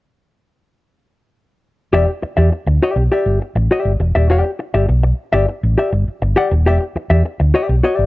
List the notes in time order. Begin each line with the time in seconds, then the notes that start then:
1.93 E1 G4 D5 E5
2.08 muted hollow-body jazz guitar stroke
2.22 muted hollow-body jazz guitar stroke, muted fingered electric bass stroke
2.37 E2 G4 D5 E5
2.52 muted hollow-body jazz guitar stroke
2.66 D2, muted hollow-body jazz guitar stroke
2.83 G4 D5 E5
2.96 B1, muted hollow-body jazz guitar stroke
3.12 G4 D5 E5
3.26 G1
3.42 muted hollow-body jazz guitar stroke
3.55 A1, muted hollow-body jazz guitar stroke
3.71 G4 D5 E5
3.85 G1
4.00 E1, muted hollow-body jazz guitar stroke
4.15 D#1 G4 D5 E5
4.30 E1 G4 D5 F#5
4.44 muted hollow-body jazz guitar stroke
4.59 muted hollow-body jazz guitar stroke
4.74 G1 G4 D5 E5
4.88 B1, muted hollow-body jazz guitar stroke
5.03 muted hollow-body jazz guitar stroke
5.33 G1 G4 D5 E5
5.48 muted hollow-body jazz guitar stroke
5.63 A1
5.78 G4 D5 E5
5.92 G1, muted hollow-body jazz guitar stroke
6.08 muted fingered electric bass stroke
6.22 G1, muted hollow-body jazz guitar stroke
6.36 G4 D5 F#5
6.51 D#1, muted hollow-body jazz guitar stroke
6.65 E1 G4 D5 E5
6.81 muted hollow-body jazz guitar stroke
6.95 muted fingered electric bass stroke, muted hollow-body jazz guitar stroke
7.10 E2 G4 D5 E5
7.25 muted hollow-body jazz guitar stroke
7.40 D2, muted hollow-body jazz guitar stroke
7.54 G4 D5 E5
7.69 B1, muted hollow-body jazz guitar stroke
7.83 F#4 C#5 D#5
7.94 G4 D5 E5
7.99 G1